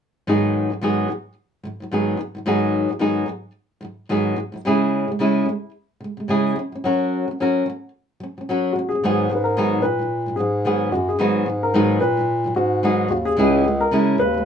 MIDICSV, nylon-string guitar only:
0, 0, Header, 1, 2, 480
1, 0, Start_track
1, 0, Key_signature, 5, "minor"
1, 0, Tempo, 545455
1, 242, Time_signature, 4, 2, 24, 8
1, 12716, End_track
2, 0, Start_track
2, 0, Title_t, "Nylon-string guitar"
2, 0, Program_c, 0, 24
2, 239, Note_on_c, 0, 44, 73
2, 243, Note_on_c, 0, 51, 70
2, 245, Note_on_c, 0, 54, 68
2, 250, Note_on_c, 0, 59, 68
2, 255, Note_on_c, 0, 63, 71
2, 259, Note_on_c, 0, 68, 71
2, 606, Note_off_c, 0, 44, 0
2, 616, Note_on_c, 0, 44, 37
2, 622, Note_off_c, 0, 51, 0
2, 628, Note_off_c, 0, 54, 0
2, 631, Note_off_c, 0, 59, 0
2, 633, Note_off_c, 0, 63, 0
2, 633, Note_on_c, 0, 51, 42
2, 635, Note_off_c, 0, 68, 0
2, 646, Note_on_c, 0, 54, 43
2, 706, Note_off_c, 0, 44, 0
2, 714, Note_off_c, 0, 51, 0
2, 716, Note_off_c, 0, 54, 0
2, 717, Note_on_c, 0, 44, 63
2, 725, Note_on_c, 0, 51, 69
2, 727, Note_on_c, 0, 54, 71
2, 734, Note_on_c, 0, 59, 71
2, 734, Note_on_c, 0, 63, 70
2, 740, Note_on_c, 0, 68, 69
2, 942, Note_off_c, 0, 44, 0
2, 952, Note_on_c, 0, 44, 45
2, 958, Note_off_c, 0, 51, 0
2, 965, Note_off_c, 0, 54, 0
2, 968, Note_on_c, 0, 51, 47
2, 969, Note_off_c, 0, 59, 0
2, 969, Note_off_c, 0, 63, 0
2, 972, Note_off_c, 0, 68, 0
2, 983, Note_on_c, 0, 54, 53
2, 1160, Note_off_c, 0, 44, 0
2, 1168, Note_off_c, 0, 51, 0
2, 1176, Note_off_c, 0, 54, 0
2, 1439, Note_on_c, 0, 44, 51
2, 1454, Note_on_c, 0, 51, 58
2, 1468, Note_on_c, 0, 54, 49
2, 1576, Note_off_c, 0, 44, 0
2, 1587, Note_on_c, 0, 44, 39
2, 1594, Note_off_c, 0, 51, 0
2, 1601, Note_off_c, 0, 54, 0
2, 1603, Note_on_c, 0, 51, 47
2, 1615, Note_on_c, 0, 54, 44
2, 1675, Note_off_c, 0, 44, 0
2, 1682, Note_off_c, 0, 51, 0
2, 1685, Note_off_c, 0, 54, 0
2, 1685, Note_on_c, 0, 44, 62
2, 1693, Note_on_c, 0, 51, 60
2, 1696, Note_on_c, 0, 54, 68
2, 1696, Note_on_c, 0, 59, 60
2, 1701, Note_on_c, 0, 63, 68
2, 1705, Note_on_c, 0, 68, 66
2, 1901, Note_off_c, 0, 44, 0
2, 1912, Note_on_c, 0, 44, 52
2, 1918, Note_off_c, 0, 51, 0
2, 1928, Note_on_c, 0, 51, 50
2, 1931, Note_off_c, 0, 54, 0
2, 1931, Note_off_c, 0, 59, 0
2, 1934, Note_off_c, 0, 63, 0
2, 1936, Note_off_c, 0, 68, 0
2, 1941, Note_on_c, 0, 54, 64
2, 2055, Note_off_c, 0, 44, 0
2, 2066, Note_on_c, 0, 44, 43
2, 2071, Note_off_c, 0, 51, 0
2, 2078, Note_off_c, 0, 54, 0
2, 2082, Note_on_c, 0, 51, 44
2, 2097, Note_on_c, 0, 54, 43
2, 2151, Note_off_c, 0, 44, 0
2, 2157, Note_off_c, 0, 51, 0
2, 2160, Note_off_c, 0, 54, 0
2, 2162, Note_on_c, 0, 44, 71
2, 2167, Note_on_c, 0, 51, 74
2, 2170, Note_on_c, 0, 54, 71
2, 2175, Note_on_c, 0, 59, 80
2, 2179, Note_on_c, 0, 63, 74
2, 2183, Note_on_c, 0, 68, 75
2, 2533, Note_off_c, 0, 44, 0
2, 2544, Note_on_c, 0, 44, 37
2, 2547, Note_off_c, 0, 51, 0
2, 2553, Note_off_c, 0, 54, 0
2, 2555, Note_off_c, 0, 59, 0
2, 2557, Note_off_c, 0, 63, 0
2, 2558, Note_on_c, 0, 51, 43
2, 2559, Note_off_c, 0, 68, 0
2, 2574, Note_on_c, 0, 54, 44
2, 2623, Note_off_c, 0, 44, 0
2, 2626, Note_off_c, 0, 51, 0
2, 2630, Note_off_c, 0, 54, 0
2, 2634, Note_on_c, 0, 44, 67
2, 2636, Note_on_c, 0, 51, 68
2, 2640, Note_on_c, 0, 54, 63
2, 2646, Note_on_c, 0, 59, 64
2, 2649, Note_on_c, 0, 63, 75
2, 2653, Note_on_c, 0, 68, 72
2, 2859, Note_off_c, 0, 44, 0
2, 2870, Note_on_c, 0, 44, 46
2, 2874, Note_off_c, 0, 51, 0
2, 2884, Note_off_c, 0, 54, 0
2, 2885, Note_on_c, 0, 51, 56
2, 2887, Note_off_c, 0, 59, 0
2, 2888, Note_off_c, 0, 63, 0
2, 2890, Note_off_c, 0, 68, 0
2, 2896, Note_on_c, 0, 54, 55
2, 3080, Note_off_c, 0, 44, 0
2, 3088, Note_off_c, 0, 51, 0
2, 3093, Note_off_c, 0, 54, 0
2, 3350, Note_on_c, 0, 44, 54
2, 3365, Note_on_c, 0, 51, 54
2, 3384, Note_on_c, 0, 54, 50
2, 3561, Note_off_c, 0, 44, 0
2, 3568, Note_off_c, 0, 51, 0
2, 3578, Note_off_c, 0, 54, 0
2, 3601, Note_on_c, 0, 44, 65
2, 3606, Note_on_c, 0, 51, 62
2, 3607, Note_on_c, 0, 54, 69
2, 3610, Note_on_c, 0, 59, 67
2, 3620, Note_on_c, 0, 63, 71
2, 3624, Note_on_c, 0, 68, 70
2, 3829, Note_off_c, 0, 44, 0
2, 3840, Note_on_c, 0, 44, 58
2, 3842, Note_off_c, 0, 51, 0
2, 3848, Note_off_c, 0, 54, 0
2, 3849, Note_off_c, 0, 59, 0
2, 3852, Note_on_c, 0, 51, 53
2, 3854, Note_off_c, 0, 63, 0
2, 3857, Note_off_c, 0, 68, 0
2, 3870, Note_on_c, 0, 54, 58
2, 3969, Note_off_c, 0, 44, 0
2, 3979, Note_on_c, 0, 44, 43
2, 3982, Note_off_c, 0, 51, 0
2, 3993, Note_on_c, 0, 51, 42
2, 4000, Note_off_c, 0, 54, 0
2, 4011, Note_on_c, 0, 54, 46
2, 4082, Note_off_c, 0, 44, 0
2, 4088, Note_off_c, 0, 51, 0
2, 4092, Note_on_c, 0, 49, 76
2, 4093, Note_off_c, 0, 54, 0
2, 4096, Note_on_c, 0, 56, 68
2, 4105, Note_on_c, 0, 61, 69
2, 4110, Note_on_c, 0, 68, 86
2, 4111, Note_on_c, 0, 64, 76
2, 4458, Note_off_c, 0, 49, 0
2, 4469, Note_on_c, 0, 49, 41
2, 4477, Note_off_c, 0, 56, 0
2, 4481, Note_off_c, 0, 61, 0
2, 4484, Note_off_c, 0, 64, 0
2, 4484, Note_off_c, 0, 68, 0
2, 4503, Note_on_c, 0, 56, 51
2, 4557, Note_off_c, 0, 49, 0
2, 4566, Note_off_c, 0, 56, 0
2, 4568, Note_on_c, 0, 49, 69
2, 4576, Note_on_c, 0, 56, 74
2, 4580, Note_on_c, 0, 61, 66
2, 4584, Note_on_c, 0, 64, 82
2, 4590, Note_on_c, 0, 68, 75
2, 4790, Note_off_c, 0, 49, 0
2, 4801, Note_on_c, 0, 49, 54
2, 4813, Note_off_c, 0, 56, 0
2, 4815, Note_off_c, 0, 61, 0
2, 4817, Note_off_c, 0, 64, 0
2, 4820, Note_off_c, 0, 68, 0
2, 4831, Note_on_c, 0, 56, 56
2, 5007, Note_off_c, 0, 49, 0
2, 5022, Note_off_c, 0, 56, 0
2, 5284, Note_on_c, 0, 49, 46
2, 5317, Note_on_c, 0, 56, 55
2, 5419, Note_off_c, 0, 49, 0
2, 5430, Note_on_c, 0, 49, 42
2, 5446, Note_off_c, 0, 56, 0
2, 5456, Note_on_c, 0, 56, 44
2, 5516, Note_off_c, 0, 49, 0
2, 5525, Note_off_c, 0, 56, 0
2, 5527, Note_on_c, 0, 49, 65
2, 5536, Note_on_c, 0, 56, 68
2, 5538, Note_on_c, 0, 61, 64
2, 5545, Note_on_c, 0, 64, 71
2, 5547, Note_on_c, 0, 68, 80
2, 5766, Note_off_c, 0, 56, 0
2, 5769, Note_off_c, 0, 49, 0
2, 5769, Note_on_c, 0, 54, 56
2, 5774, Note_off_c, 0, 61, 0
2, 5778, Note_off_c, 0, 64, 0
2, 5779, Note_off_c, 0, 68, 0
2, 5799, Note_on_c, 0, 61, 59
2, 5906, Note_off_c, 0, 54, 0
2, 5917, Note_on_c, 0, 54, 43
2, 5929, Note_off_c, 0, 61, 0
2, 5944, Note_on_c, 0, 61, 46
2, 6008, Note_off_c, 0, 54, 0
2, 6018, Note_on_c, 0, 54, 65
2, 6019, Note_off_c, 0, 61, 0
2, 6030, Note_on_c, 0, 61, 72
2, 6032, Note_on_c, 0, 66, 80
2, 6040, Note_on_c, 0, 70, 78
2, 6393, Note_off_c, 0, 54, 0
2, 6404, Note_off_c, 0, 61, 0
2, 6404, Note_on_c, 0, 54, 43
2, 6405, Note_off_c, 0, 66, 0
2, 6409, Note_off_c, 0, 70, 0
2, 6433, Note_on_c, 0, 61, 46
2, 6495, Note_off_c, 0, 54, 0
2, 6510, Note_off_c, 0, 61, 0
2, 6514, Note_on_c, 0, 54, 69
2, 6519, Note_on_c, 0, 61, 72
2, 6529, Note_on_c, 0, 66, 71
2, 6531, Note_on_c, 0, 70, 68
2, 6728, Note_off_c, 0, 54, 0
2, 6739, Note_on_c, 0, 54, 52
2, 6745, Note_off_c, 0, 61, 0
2, 6750, Note_off_c, 0, 66, 0
2, 6751, Note_off_c, 0, 70, 0
2, 6772, Note_on_c, 0, 61, 57
2, 6936, Note_off_c, 0, 54, 0
2, 6953, Note_off_c, 0, 61, 0
2, 7218, Note_on_c, 0, 54, 50
2, 7246, Note_on_c, 0, 61, 62
2, 7358, Note_off_c, 0, 54, 0
2, 7372, Note_on_c, 0, 54, 42
2, 7373, Note_off_c, 0, 61, 0
2, 7400, Note_on_c, 0, 61, 44
2, 7459, Note_off_c, 0, 54, 0
2, 7468, Note_off_c, 0, 61, 0
2, 7471, Note_on_c, 0, 54, 70
2, 7479, Note_on_c, 0, 61, 71
2, 7485, Note_on_c, 0, 66, 62
2, 7488, Note_on_c, 0, 70, 66
2, 7695, Note_off_c, 0, 54, 0
2, 7704, Note_off_c, 0, 61, 0
2, 7705, Note_on_c, 0, 54, 56
2, 7708, Note_off_c, 0, 66, 0
2, 7709, Note_off_c, 0, 70, 0
2, 7733, Note_on_c, 0, 61, 63
2, 7838, Note_off_c, 0, 54, 0
2, 7849, Note_on_c, 0, 54, 45
2, 7856, Note_off_c, 0, 61, 0
2, 7878, Note_on_c, 0, 61, 45
2, 7938, Note_off_c, 0, 54, 0
2, 7951, Note_on_c, 0, 44, 65
2, 7952, Note_off_c, 0, 61, 0
2, 7952, Note_on_c, 0, 51, 69
2, 7958, Note_on_c, 0, 54, 74
2, 7964, Note_on_c, 0, 59, 74
2, 7964, Note_on_c, 0, 63, 82
2, 7969, Note_on_c, 0, 68, 82
2, 8167, Note_off_c, 0, 44, 0
2, 8178, Note_on_c, 0, 44, 53
2, 8181, Note_off_c, 0, 51, 0
2, 8184, Note_off_c, 0, 54, 0
2, 8187, Note_off_c, 0, 59, 0
2, 8187, Note_off_c, 0, 63, 0
2, 8190, Note_off_c, 0, 68, 0
2, 8194, Note_on_c, 0, 51, 51
2, 8207, Note_on_c, 0, 54, 51
2, 8376, Note_off_c, 0, 44, 0
2, 8384, Note_off_c, 0, 51, 0
2, 8390, Note_off_c, 0, 54, 0
2, 8418, Note_on_c, 0, 44, 64
2, 8421, Note_on_c, 0, 51, 73
2, 8424, Note_on_c, 0, 54, 65
2, 8431, Note_on_c, 0, 59, 73
2, 8433, Note_on_c, 0, 63, 71
2, 8438, Note_on_c, 0, 68, 71
2, 8632, Note_off_c, 0, 44, 0
2, 8642, Note_on_c, 0, 44, 53
2, 8648, Note_off_c, 0, 51, 0
2, 8657, Note_off_c, 0, 54, 0
2, 8659, Note_on_c, 0, 51, 46
2, 8660, Note_off_c, 0, 59, 0
2, 8661, Note_off_c, 0, 63, 0
2, 8664, Note_off_c, 0, 68, 0
2, 8671, Note_on_c, 0, 54, 54
2, 8781, Note_off_c, 0, 44, 0
2, 8791, Note_on_c, 0, 44, 44
2, 8798, Note_off_c, 0, 51, 0
2, 8804, Note_off_c, 0, 54, 0
2, 8813, Note_on_c, 0, 51, 46
2, 8822, Note_on_c, 0, 54, 45
2, 8975, Note_off_c, 0, 44, 0
2, 8985, Note_off_c, 0, 51, 0
2, 8990, Note_off_c, 0, 54, 0
2, 9031, Note_on_c, 0, 44, 38
2, 9047, Note_on_c, 0, 51, 41
2, 9059, Note_on_c, 0, 54, 46
2, 9115, Note_off_c, 0, 44, 0
2, 9126, Note_on_c, 0, 44, 48
2, 9133, Note_off_c, 0, 51, 0
2, 9142, Note_off_c, 0, 54, 0
2, 9144, Note_on_c, 0, 51, 48
2, 9155, Note_on_c, 0, 54, 62
2, 9329, Note_off_c, 0, 44, 0
2, 9338, Note_off_c, 0, 51, 0
2, 9343, Note_off_c, 0, 54, 0
2, 9370, Note_on_c, 0, 44, 58
2, 9374, Note_on_c, 0, 51, 70
2, 9379, Note_on_c, 0, 54, 64
2, 9381, Note_on_c, 0, 59, 69
2, 9388, Note_on_c, 0, 68, 77
2, 9389, Note_on_c, 0, 63, 65
2, 9601, Note_off_c, 0, 44, 0
2, 9611, Note_off_c, 0, 51, 0
2, 9612, Note_on_c, 0, 44, 53
2, 9614, Note_off_c, 0, 54, 0
2, 9615, Note_off_c, 0, 59, 0
2, 9618, Note_off_c, 0, 68, 0
2, 9619, Note_off_c, 0, 63, 0
2, 9625, Note_on_c, 0, 51, 55
2, 9638, Note_on_c, 0, 54, 62
2, 9812, Note_off_c, 0, 44, 0
2, 9819, Note_off_c, 0, 51, 0
2, 9825, Note_off_c, 0, 54, 0
2, 9844, Note_on_c, 0, 44, 74
2, 9850, Note_on_c, 0, 54, 70
2, 9852, Note_on_c, 0, 51, 66
2, 9856, Note_on_c, 0, 59, 75
2, 9861, Note_on_c, 0, 63, 72
2, 9864, Note_on_c, 0, 68, 76
2, 10075, Note_off_c, 0, 44, 0
2, 10085, Note_on_c, 0, 44, 56
2, 10089, Note_off_c, 0, 54, 0
2, 10090, Note_off_c, 0, 51, 0
2, 10092, Note_off_c, 0, 59, 0
2, 10094, Note_off_c, 0, 63, 0
2, 10096, Note_off_c, 0, 68, 0
2, 10102, Note_on_c, 0, 51, 54
2, 10115, Note_on_c, 0, 54, 58
2, 10288, Note_off_c, 0, 44, 0
2, 10297, Note_off_c, 0, 51, 0
2, 10303, Note_off_c, 0, 54, 0
2, 10329, Note_on_c, 0, 44, 67
2, 10334, Note_on_c, 0, 51, 70
2, 10337, Note_on_c, 0, 54, 67
2, 10344, Note_on_c, 0, 59, 69
2, 10344, Note_on_c, 0, 63, 73
2, 10348, Note_on_c, 0, 68, 73
2, 10550, Note_off_c, 0, 44, 0
2, 10561, Note_on_c, 0, 44, 51
2, 10566, Note_off_c, 0, 51, 0
2, 10572, Note_off_c, 0, 54, 0
2, 10575, Note_off_c, 0, 59, 0
2, 10576, Note_off_c, 0, 63, 0
2, 10577, Note_on_c, 0, 51, 52
2, 10578, Note_off_c, 0, 68, 0
2, 10593, Note_on_c, 0, 54, 53
2, 10701, Note_off_c, 0, 44, 0
2, 10711, Note_on_c, 0, 44, 46
2, 10716, Note_off_c, 0, 51, 0
2, 10724, Note_off_c, 0, 54, 0
2, 10728, Note_on_c, 0, 51, 46
2, 10742, Note_on_c, 0, 54, 50
2, 10893, Note_off_c, 0, 44, 0
2, 10902, Note_off_c, 0, 51, 0
2, 10909, Note_off_c, 0, 54, 0
2, 10948, Note_on_c, 0, 44, 45
2, 10965, Note_on_c, 0, 51, 45
2, 10976, Note_on_c, 0, 54, 49
2, 11029, Note_off_c, 0, 44, 0
2, 11040, Note_on_c, 0, 44, 49
2, 11046, Note_off_c, 0, 51, 0
2, 11057, Note_off_c, 0, 54, 0
2, 11057, Note_on_c, 0, 51, 56
2, 11068, Note_on_c, 0, 54, 52
2, 11245, Note_off_c, 0, 44, 0
2, 11253, Note_off_c, 0, 51, 0
2, 11259, Note_off_c, 0, 54, 0
2, 11290, Note_on_c, 0, 44, 61
2, 11291, Note_on_c, 0, 51, 64
2, 11296, Note_on_c, 0, 59, 68
2, 11297, Note_on_c, 0, 54, 63
2, 11305, Note_on_c, 0, 63, 76
2, 11308, Note_on_c, 0, 68, 77
2, 11503, Note_off_c, 0, 44, 0
2, 11514, Note_on_c, 0, 44, 58
2, 11520, Note_off_c, 0, 51, 0
2, 11530, Note_on_c, 0, 51, 57
2, 11531, Note_off_c, 0, 54, 0
2, 11531, Note_off_c, 0, 59, 0
2, 11536, Note_off_c, 0, 63, 0
2, 11537, Note_off_c, 0, 68, 0
2, 11544, Note_on_c, 0, 54, 62
2, 11721, Note_off_c, 0, 44, 0
2, 11730, Note_off_c, 0, 51, 0
2, 11736, Note_off_c, 0, 54, 0
2, 11762, Note_on_c, 0, 49, 74
2, 11767, Note_on_c, 0, 56, 72
2, 11778, Note_on_c, 0, 61, 82
2, 11784, Note_on_c, 0, 64, 74
2, 11787, Note_on_c, 0, 68, 82
2, 11995, Note_off_c, 0, 49, 0
2, 12005, Note_on_c, 0, 49, 50
2, 12006, Note_off_c, 0, 56, 0
2, 12011, Note_off_c, 0, 61, 0
2, 12014, Note_off_c, 0, 64, 0
2, 12016, Note_off_c, 0, 68, 0
2, 12037, Note_on_c, 0, 56, 64
2, 12207, Note_off_c, 0, 49, 0
2, 12222, Note_off_c, 0, 56, 0
2, 12243, Note_on_c, 0, 49, 66
2, 12249, Note_on_c, 0, 56, 72
2, 12256, Note_on_c, 0, 61, 78
2, 12257, Note_on_c, 0, 64, 76
2, 12262, Note_on_c, 0, 68, 80
2, 12468, Note_off_c, 0, 49, 0
2, 12479, Note_on_c, 0, 49, 49
2, 12486, Note_off_c, 0, 56, 0
2, 12490, Note_off_c, 0, 61, 0
2, 12491, Note_off_c, 0, 64, 0
2, 12493, Note_off_c, 0, 68, 0
2, 12505, Note_on_c, 0, 56, 60
2, 12610, Note_off_c, 0, 49, 0
2, 12621, Note_on_c, 0, 49, 47
2, 12639, Note_off_c, 0, 56, 0
2, 12651, Note_on_c, 0, 56, 53
2, 12716, Note_off_c, 0, 49, 0
2, 12716, Note_off_c, 0, 56, 0
2, 12716, End_track
0, 0, End_of_file